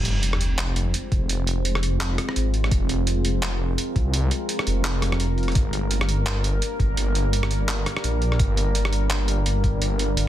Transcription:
Already playing: detuned saw bass F1, ambient pad G#3 C4 F4 C5, sub drop
0.05 closed hi-hat
0.23 closed hi-hat
0.33 cross-stick
0.41 closed hi-hat
0.58 cross-stick, clap, closed hi-hat
0.76 closed hi-hat
0.94 closed hi-hat
1.12 detuned saw bass F1, kick, closed hi-hat
1.29 closed hi-hat
1.47 closed hi-hat
1.65 closed hi-hat
1.75 cross-stick
1.83 closed hi-hat
2.01 clap, closed hi-hat
2.18 cross-stick, closed hi-hat
2.29 cross-stick
2.36 detuned saw bass G#1, closed hi-hat
2.54 closed hi-hat
2.64 cross-stick
2.71 detuned saw bass F1, ambient pad A#4, kick, closed hi-hat
2.89 closed hi-hat
3.07 closed hi-hat
3.25 closed hi-hat
3.43 cross-stick, clap, closed hi-hat
3.78 closed hi-hat
3.96 detuned saw bass C2, kick, closed hi-hat
4.14 closed hi-hat
4.31 closed hi-hat
4.49 closed hi-hat
4.59 cross-stick
4.67 detuned saw bass F1, closed hi-hat
4.84 clap, closed hi-hat
5.02 detuned saw bass F1, cross-stick, closed hi-hat
5.12 cross-stick
5.20 closed hi-hat
5.38 closed hi-hat
5.43 closed hi-hat
5.48 cross-stick, closed hi-hat
5.52 closed hi-hat
5.55 detuned saw bass G1, ambient pad G3 A#3 D4, kick, closed hi-hat
5.73 closed hi-hat
5.91 closed hi-hat
6.01 cross-stick
6.09 closed hi-hat
6.26 cross-stick, clap, closed hi-hat
6.44 closed hi-hat
6.62 closed hi-hat
6.80 detuned saw bass G1, kick, closed hi-hat
6.97 closed hi-hat
7.15 closed hi-hat
7.33 closed hi-hat
7.43 cross-stick
7.51 closed hi-hat
7.68 clap, closed hi-hat
7.86 cross-stick, closed hi-hat
7.97 cross-stick
8.04 detuned saw bass A#1, closed hi-hat
8.22 closed hi-hat
8.32 cross-stick
8.39 detuned saw bass G1, kick, closed hi-hat
8.57 closed hi-hat
8.75 closed hi-hat
8.85 cross-stick
8.93 closed hi-hat
9.10 cross-stick, clap, closed hi-hat
9.28 closed hi-hat
9.46 detuned saw bass G1, closed hi-hat
9.64 kick, closed hi-hat
9.82 closed hi-hat
9.99 closed hi-hat
10.17 detuned saw bass G1, closed hi-hat

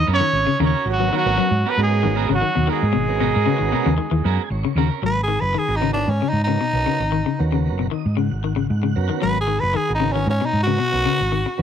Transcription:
0.07 fingered electric bass F#2, clean electric guitar B3 C#4 F#4 A#4
0.13 alto saxophone C#4, trumpet C#5
0.20 clean electric guitar D#3
0.33 fingered electric bass G#1
0.47 clean electric guitar C#3
0.59 fingered electric bass D#2, clean electric guitar C#3 C#4 F#4 A#4, alto saxophone C#4, muted clean electric guitar stroke
0.65 trumpet C#5
0.73 clean electric guitar C#4 F#4 A#4
0.85 fingered electric bass G#1, tonewheel organ F#4 A#4
0.90 alto saxophone F#3, trumpet F#4
1.00 clean electric guitar F#3, tonewheel organ B3 C#4 F#4 A#4
1.12 clean electric guitar D#3 B3 C#4 F#4 A#4, alto saxophone F#3
1.17 trumpet F#4
1.26 fingered electric bass G#1, tonewheel organ B3 C#4 F#4 A#4, clean electric guitar C#4 F#4 A#4
1.38 clean electric guitar F#3
1.51 fingered electric bass G#2
1.66 clean electric guitar B3 C#4 F#4 A#4, alto saxophone B3
1.70 trumpet B4
1.78 fingered electric bass G#2, alto saxophone G#3, tonewheel organ B3 C#4 F#4 A#4
1.83 trumpet G#4
2.03 fingered electric bass G#1, clean electric guitar D#3
2.16 clean electric guitar B3 C#4 F#4 A#4
2.29 fingered electric bass G#1, clean electric guitar C#3, alto saxophone F#3
2.34 trumpet F#4
2.42 clean electric guitar D#3
2.55 fingered electric bass D#2, clean electric guitar B2
2.67 clean electric guitar D#3 B3 C#4 F#4 A#4, trumpet G#4
2.72 alto saxophone G#3
2.83 fingered electric bass G#2
2.93 fingered electric bass G#1, clean electric guitar B2
3.08 tonewheel organ B3 C#4 F#4 A#4
3.20 clean electric guitar B2 B3 C#4 F#4 A#4
3.33 fingered electric bass G#2, clean electric guitar C#4 F#4 A#4
3.46 clean electric guitar C#3, tonewheel organ B3 C#4 F#4 A#4
3.58 fingered electric bass G#1, clean electric guitar D#3
3.72 clean electric guitar B2 B3 C#4 F#4 A#4
3.86 fingered electric bass D#2, clean electric guitar C#3
3.98 clean electric guitar D#3, muted fingered electric bass stroke
4.11 fingered electric bass D#2, clean electric guitar E3
4.24 fingered electric bass F#2, clean electric guitar B3 C#4 F#4 A#4, tonewheel organ G#5
4.50 fingered electric bass G#1, tonewheel organ C#5
4.65 clean electric guitar C#3
4.76 fingered electric bass D#2, clean electric guitar C#3 C#4 F#4 A#4
4.89 clean electric guitar C#4 A#4, muted clean electric guitar stroke
5.02 fingered electric bass G#1, clean electric guitar F#3, tenor saxophone B4
5.23 tenor saxophone G#4
5.28 clean electric guitar D#3
5.40 fingered electric bass F#1, tenor saxophone B4
5.54 clean electric guitar D#3, tenor saxophone G#4
5.68 fingered electric bass G#1, tonewheel organ F#4 A#4
5.76 tonewheel organ B3, tenor saxophone D#4
5.81 clean electric guitar C#3, tonewheel organ C#4 F#4 A#4
5.93 clean electric guitar D#3, tenor saxophone D4
6.08 fingered electric bass G#2, tenor saxophone C#4
6.22 clean electric guitar C#3
6.29 fingered electric bass G#2, tenor saxophone D#4
6.44 tonewheel organ B3 C#4 F#4 A#4, tenor saxophone D#4
6.48 clean electric guitar C#3
6.61 clean electric guitar B2, muted fingered electric bass stroke
6.73 fingered electric bass B1, tonewheel organ B3 C#4 F#4 A#4
6.86 clean electric guitar C#3
7.00 fingered electric bass G#1
7.12 clean electric guitar D#3
7.26 clean electric guitar C#3
7.39 fingered electric bass D#2, tonewheel organ B3 C#4 F#4 A#4
7.52 clean electric guitar C#3
7.67 fingered electric bass F#1
7.79 clean electric guitar B2
7.91 clean electric guitar D#3, tonewheel organ D#5
8.06 fingered electric bass G#2
8.17 clean electric guitar C#3, tonewheel organ F#5
8.31 fingered electric bass G#1
8.44 clean electric guitar D#3
8.56 clean electric guitar C#3
8.70 fingered electric bass G#2, tonewheel organ F#5
8.83 clean electric guitar C#3
8.96 fingered electric bass F#2, tonewheel organ B3 C#4 F#4 A#4
9.09 clean electric guitar D#3
9.22 fingered electric bass G#1, clean electric guitar F#3, tenor saxophone B4
9.41 tenor saxophone G#4
9.47 clean electric guitar D#3
9.60 fingered electric bass F#1, tenor saxophone B4
9.74 clean electric guitar D#3, tenor saxophone G#4
9.88 fingered electric bass G#1, tonewheel organ F#4 A#4
9.95 tenor saxophone D#4
10.00 clean electric guitar C#3, tonewheel organ B3 C#4 F#4 A#4
10.13 clean electric guitar D#3, tenor saxophone C#4
10.27 fingered electric bass G#2, tenor saxophone C#4
10.41 clean electric guitar B2
10.46 tenor saxophone D#4
10.53 fingered electric bass G#2
10.63 clean electric guitar C#3, tonewheel organ B3 C#4 F#4, tenor saxophone F#4
10.67 tonewheel organ A#4
10.79 clean electric guitar B2, muted fingered electric bass stroke
10.92 fingered electric bass B1, tonewheel organ B3 C#4 F#4 A#4
11.05 clean electric guitar C#3
11.21 fingered electric bass G#1
11.32 clean electric guitar D#3
11.46 muted clean electric guitar stroke
11.58 tonewheel organ B3 C#4 F#4 B4

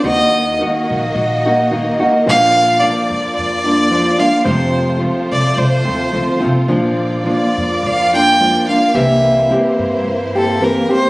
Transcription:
0.04 upright bass D#2, nylon-string guitar D#3 A#3 D#4 F#4, violin section A#3 F#4 D#5, violin D#5
0.60 nylon-string guitar D#3 A#3 D#4 F#4
0.90 upright bass A#1
1.15 upright bass A#1
1.46 nylon-string guitar A#3 D#4 F#4
1.71 nylon-string guitar D#3 A#3 D#4 F#4
2.00 nylon-string guitar A#3 D#4 F#4
2.27 upright bass A#1, nylon-string guitar A#2 F3 A#3 D4 F4, violin section F4 D5, violin F5
2.80 nylon-string guitar F3 A#3 D4 F4, violin D5
3.10 upright bass F2
3.35 upright bass F2, violin D5
3.64 nylon-string guitar A#3 D4 F4
3.90 nylon-string guitar F3 A#3 D4 F4
4.18 nylon-string guitar A#3 D4 F4, violin F5
4.44 upright bass F1, nylon-string guitar F2 C3 F3 A3 C4 F4, violin section A3 C5, violin C5
4.99 nylon-string guitar F3 A3 C4 F4
5.31 upright bass C2, violin D5
5.57 upright bass C2, violin C5
5.85 upright bass D#2, nylon-string guitar F3 A3 C4 F4
6.11 upright bass D2, nylon-string guitar F3 A3 C4 F4
6.40 upright bass C2, nylon-string guitar F3 A3 C4 F4
6.68 upright bass A#1, nylon-string guitar A#2 F3 A#3 D4 F4, violin section A#3 D5
7.25 nylon-string guitar F3 A#3 D4 F4
7.31 violin D5
7.57 upright bass F2
7.83 upright bass F2, violin F5
8.13 nylon-string guitar A#3 D4 F4, violin G5
8.40 nylon-string guitar F3 A#3 D4 F4
8.68 nylon-string guitar A#3 D4 F4, violin F5
8.94 upright bass C2, nylon-string guitar C3 E3 A#3 C4 G4, violin section E4 C5, violin E5
9.50 nylon-string guitar E3 A#3 C4 G4
9.79 upright bass G2
10.05 upright bass G2
10.35 nylon-string guitar A#3 C4 G4, violin A4
10.61 nylon-string guitar E3 A#3 C4 G4, violin A#4
10.89 nylon-string guitar A#3 C4 G4, violin C5

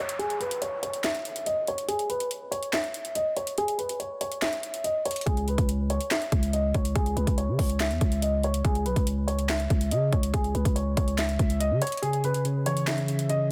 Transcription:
Already playing: downlifter
0.00 grand piano C#5
0.09 closed hi-hat
0.19 grand piano G#4, closed hi-hat
0.30 closed hi-hat
0.40 grand piano B4, closed hi-hat
0.51 closed hi-hat
0.62 grand piano C#5, closed hi-hat
0.83 grand piano C#5, closed hi-hat
0.94 closed hi-hat
1.04 grand piano E5, snare, clap, closed hi-hat
1.15 closed hi-hat
1.25 closed hi-hat
1.36 closed hi-hat
1.46 grand piano D#5, closed hi-hat
1.67 grand piano C#5, closed hi-hat
1.78 closed hi-hat
1.88 grand piano G#4, closed hi-hat
1.99 closed hi-hat
2.09 grand piano B4, closed hi-hat
2.20 closed hi-hat
2.31 closed hi-hat
2.51 grand piano C#5, closed hi-hat
2.63 closed hi-hat
2.73 grand piano E5, snare, clap, closed hi-hat
2.84 closed hi-hat
2.94 closed hi-hat
3.05 closed hi-hat
3.15 grand piano D#5, closed hi-hat
3.37 grand piano C#5, closed hi-hat
3.47 closed hi-hat
3.58 grand piano G#4, closed hi-hat
3.68 closed hi-hat
3.78 grand piano B4, closed hi-hat
3.89 closed hi-hat
4.00 grand piano C#5, closed hi-hat
4.21 grand piano C#5, closed hi-hat
4.32 closed hi-hat
4.42 grand piano E5, snare, clap, closed hi-hat
4.53 closed hi-hat
4.63 closed hi-hat
4.74 closed hi-hat
4.84 grand piano D#5, closed hi-hat
5.05 grand piano C#5, closed hi-hat
5.11 closed hi-hat
5.16 closed hi-hat
5.21 closed hi-hat
5.26 808-style bass C#2, grand piano G#4, kick, closed hi-hat
5.37 closed hi-hat
5.48 grand piano B4, closed hi-hat
5.58 808-style bass C#2, kick, closed hi-hat
5.69 closed hi-hat
5.90 grand piano C#5, closed hi-hat
6.01 closed hi-hat
6.11 grand piano E5, snare, clap, closed hi-hat
6.22 closed hi-hat
6.32 808-style bass C#2, kick, closed hi-hat
6.43 closed hi-hat
6.53 grand piano D#5, closed hi-hat
6.74 808-style bass C#2, grand piano C#5, kick, closed hi-hat
6.85 closed hi-hat
6.95 808-style bass C#2, grand piano G#4, kick, closed hi-hat
7.06 closed hi-hat
7.16 808-style bass C#2, grand piano B4, closed hi-hat
7.27 808-style bass C#2, kick, closed hi-hat
7.38 grand piano C#5, closed hi-hat
7.48 808-style bass C#3
7.59 808-style bass C#2, grand piano C#5, kick, open hi-hat
7.70 closed hi-hat
7.80 grand piano E5, snare, clap, closed hi-hat
7.91 808-style bass E2, closed hi-hat
8.01 808-style bass C#2, kick, closed hi-hat
8.12 closed hi-hat
8.22 grand piano D#5, closed hi-hat
8.44 grand piano C#5, closed hi-hat
8.54 closed hi-hat
8.64 808-style bass C#2, grand piano G#4, kick, closed hi-hat
8.75 closed hi-hat
8.86 808-style bass B1, grand piano B4, closed hi-hat
8.96 808-style bass C#2, kick, closed hi-hat
9.07 closed hi-hat
9.27 grand piano C#5, closed hi-hat
9.39 closed hi-hat
9.49 grand piano E5, snare, clap, closed hi-hat
9.60 closed hi-hat
9.70 808-style bass C#2, kick, closed hi-hat
9.81 closed hi-hat
9.91 808-style bass C#3, grand piano D#5, closed hi-hat
10.13 808-style bass C#2, grand piano C#5, kick, closed hi-hat
10.23 closed hi-hat
10.34 808-style bass C#2, grand piano G#4, kick, closed hi-hat
10.44 closed hi-hat
10.54 808-style bass C#2, grand piano B4, closed hi-hat
10.65 808-style bass C#2, kick, closed hi-hat
10.76 grand piano C#5, closed hi-hat
10.97 808-style bass C#2, grand piano C#5, kick, closed hi-hat
11.08 closed hi-hat
11.18 grand piano E5, snare, clap, closed hi-hat
11.29 closed hi-hat
11.39 808-style bass C#2, kick, closed hi-hat
11.50 closed hi-hat
11.60 grand piano D#5, closed hi-hat
11.71 808-style bass C#3
11.82 grand piano C#5, closed hi-hat
11.87 closed hi-hat
11.92 closed hi-hat
11.97 closed hi-hat
12.02 tine electric piano C#3, grand piano G#4, closed hi-hat
12.13 closed hi-hat
12.24 tine electric piano C#3, grand piano B4, closed hi-hat
12.34 closed hi-hat
12.45 tine electric piano C#3, closed hi-hat
12.66 tine electric piano E3, grand piano C#5, closed hi-hat
12.77 closed hi-hat
12.87 tine electric piano C#3, grand piano E5, snare, clap, closed hi-hat
12.98 closed hi-hat
13.08 tine electric piano C#3, closed hi-hat
13.19 closed hi-hat
13.29 tine electric piano C#3, grand piano D#5, closed hi-hat

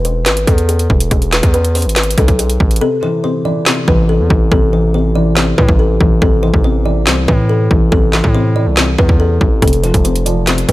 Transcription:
Already playing: 808-style bass E1
0.05 kalimba C5, closed hi-hat
0.26 808-style bass G#1, kalimba B4, snare, clap, closed hi-hat
0.37 closed hi-hat
0.47 808-style bass E2, kalimba A4, kick, closed hi-hat
0.58 closed hi-hat
0.69 kalimba G#4, closed hi-hat
0.79 closed hi-hat
0.90 808-style bass E1, kick
1.00 closed hi-hat
1.11 808-style bass E1, kalimba G#4, kick, closed hi-hat
1.22 closed hi-hat
1.32 kalimba B4, snare, clap, closed hi-hat
1.43 808-style bass E2, kick, closed hi-hat
1.54 kalimba B4, closed hi-hat
1.65 closed hi-hat
1.75 kalimba C5, closed hi-hat, open hi-hat
1.82 808-style bass G#1, closed hi-hat
1.89 closed hi-hat
1.96 kalimba B4, snare, clap, closed hi-hat
2.03 closed hi-hat
2.11 closed hi-hat
2.18 808-style bass B1, kalimba A4, kick, closed hi-hat
2.28 kick, closed hi-hat
2.39 kalimba G#4, closed hi-hat
2.50 closed hi-hat
2.60 808-style bass A1, kick
2.71 closed hi-hat
2.76 closed hi-hat
2.81 felt piano C3, kalimba A4
3.03 felt piano E3, kalimba C5
3.24 felt piano C3, kalimba C5
3.45 felt piano E3, kalimba D5
3.66 felt piano C3, kalimba C5, snare, clap
3.87 808-style bass A1, felt piano E3, kalimba B4, kick
4.09 kalimba A4
4.20 808-style bass E2
4.30 808-style bass A1, felt piano E3, kick
4.52 808-style bass A1, felt piano C3, kalimba A4, kick
4.73 felt piano E3, kalimba C5
4.94 felt piano C3, kalimba C5
5.15 felt piano E3, kalimba D5
5.36 felt piano C3, kalimba C5, snare, clap
5.58 808-style bass A2, felt piano E3, kalimba B4, kick
5.69 808-style bass A1, kick
5.79 kalimba A4
6.00 808-style bass A1, felt piano E3, kick
6.21 808-style bass A1, felt piano C3, kalimba A4, kick
6.43 felt piano E3, kalimba C5
6.54 808-style bass A1, kick
6.64 felt piano C3, kalimba C5
6.85 felt piano E3, kalimba D5
7.07 808-style bass C2, felt piano C3, kalimba C5, snare, clap
7.28 808-style bass A2, felt piano E3, kalimba B4, kick
7.49 kalimba A4
7.71 808-style bass A1, felt piano E3, kick
7.92 808-style bass A1, felt piano C3, kalimba A4, kick
8.13 felt piano E3, kalimba C5, snare, clap
8.24 808-style bass A2, kick
8.35 felt piano C3, kalimba C5
8.56 felt piano E3, kalimba D5
8.67 808-style bass C2
8.77 felt piano C3, kalimba C5, snare, clap
8.98 808-style bass E2, felt piano E3, kalimba B4, kick
9.09 kick
9.20 kalimba A4
9.41 808-style bass A1, felt piano E3, kick
9.62 808-style bass F1, felt piano C3, kalimba A4, kick, closed hi-hat
9.68 closed hi-hat
9.73 closed hi-hat
9.83 felt piano F3, kalimba C5, closed hi-hat
9.94 808-style bass F1, kick, closed hi-hat
10.05 felt piano C3, kalimba C5, closed hi-hat
10.16 closed hi-hat
10.26 felt piano F3, kalimba D5, closed hi-hat
10.47 felt piano C3, kalimba C5, snare, clap, closed hi-hat
10.58 closed hi-hat
10.68 808-style bass F1, felt piano F3, kalimba B4, kick, closed hi-hat

